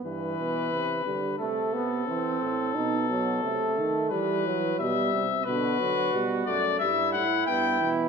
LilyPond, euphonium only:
\new Staff \with { instrumentName = "Euphonium" } { \clef bass \time 4/4 \key e \minor \tempo 4 = 89 g,8 b,8 c8 d8 c4 e8 a,8 | b,4 c8 dis8 e4 b,8 c8 | b,8 d8 b,8 fis,8 g,8 a,8 g,8 b,8 | }